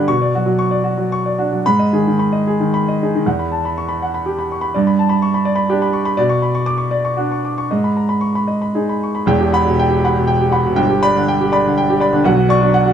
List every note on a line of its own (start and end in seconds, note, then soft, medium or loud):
0.00 0.10 D3 medium
0.00 0.10 G4 soft
0.08 1.59 B2 medium
0.08 0.28 C#6 medium
0.22 0.41 D5 soft
0.35 0.44 F#3 soft
0.35 0.54 F#4 medium
0.46 0.66 F#3 medium
0.59 0.78 C#6 medium
0.71 0.91 D5 soft
0.84 1.04 F#4 medium
0.97 1.18 F#3 soft
1.12 1.32 C#6 medium
1.26 1.46 D5 soft
1.38 1.64 D4 soft
1.38 1.59 F#4 soft
1.52 1.64 F#3 soft
1.66 3.22 G#2 medium
1.66 1.86 B5 medium
1.79 1.99 D#5 soft
1.93 2.06 D#3 soft
1.93 2.13 G#4 soft
2.07 2.27 D#3 soft
2.19 2.40 B5 medium
2.32 2.53 D#5 soft
2.47 2.67 G#4 medium
2.60 2.80 D#3 soft
2.74 2.94 B5 medium
2.88 3.08 D#5 soft
3.03 3.27 D#4 soft
3.03 3.22 G#4 soft
3.15 3.26 D#3 soft
3.26 4.70 E2 medium
3.26 3.46 F#5 soft
3.39 3.59 B5 soft
3.52 3.64 A5 soft
3.65 3.84 B5 soft
3.78 3.89 C#6 medium
3.88 4.08 B5 soft
4.02 4.21 F#5 soft
4.14 4.33 B5 soft
4.26 4.45 G4 soft
4.39 4.57 B5 soft
4.52 4.63 C#6 soft
4.61 4.73 B5 medium
4.74 6.14 G2 medium
4.74 4.93 D5 medium
4.87 5.05 B5 soft
4.99 5.10 A5 soft
5.09 5.28 B5 medium
5.22 5.34 C#6 medium
5.34 5.53 B5 soft
5.45 5.64 D5 medium
5.56 5.75 B5 medium
5.69 6.08 D4 medium
5.69 5.88 G4 medium
5.82 6.01 B5 soft
5.93 6.05 C#6 soft
6.05 6.17 B5 medium
6.17 7.64 B2 medium
6.17 6.36 D5 medium
6.29 6.49 C#6 medium
6.42 6.54 B5 soft
6.55 6.74 C#6 medium
6.66 6.78 D6 medium
6.78 6.98 C#6 soft
6.91 7.11 D5 medium
7.05 7.25 C#6 soft
7.17 7.58 D4 soft
7.17 7.37 F#4 soft
7.32 7.51 C#6 soft
7.45 7.56 D6 soft
7.58 7.70 C#6 soft
7.71 9.25 G#2 soft
7.71 7.91 D#5 soft
7.84 8.04 B5 soft
7.97 8.09 A#5 soft
8.09 8.30 B5 soft
8.21 8.35 C#6 soft
8.35 8.57 B5 soft
8.48 8.69 D#5 soft
8.62 8.83 B5 soft
8.75 9.17 D#4 soft
8.75 8.96 G#4 soft
8.89 9.10 B5 soft
9.03 9.16 C#6 soft
9.15 9.28 B5 soft
9.26 10.75 E1 medium
9.26 10.75 E2 medium
9.26 9.48 G5 medium
9.41 9.61 G4 medium
9.53 9.65 F#5 medium
9.53 9.65 B5 medium
9.66 9.86 B2 medium
9.79 9.99 G5 medium
9.90 10.11 G4 medium
10.04 10.15 F#5 medium
10.04 10.16 B5 medium
10.17 10.37 B2 medium
10.27 10.48 G5 medium
10.40 10.61 G4 medium
10.52 10.64 F#5 medium
10.52 10.65 B5 medium
10.66 10.79 B2 medium
10.76 12.21 G1 medium
10.76 12.21 G2 medium
10.76 10.98 G5 medium
10.89 11.11 G4 medium
11.03 11.15 D5 medium
11.03 11.15 B5 medium
11.15 11.37 D3 medium
11.15 11.36 D4 medium
11.28 11.49 G5 medium
11.41 11.61 G4 medium
11.52 11.64 D5 medium
11.52 11.64 B5 medium
11.66 11.85 D3 medium
11.78 11.97 G5 medium
11.90 12.10 G4 medium
12.00 12.12 D5 medium
12.00 12.13 B5 medium
12.13 12.26 D3 medium
12.13 12.26 D4 medium
12.24 12.93 B1 medium
12.24 12.93 B2 medium
12.24 12.46 F#5 medium
12.36 12.57 F#4 medium
12.49 12.61 D5 medium
12.49 12.62 C#6 medium
12.61 12.82 F#3 medium
12.61 12.82 D4 medium
12.74 12.93 F#5 medium
12.86 12.93 F#4 medium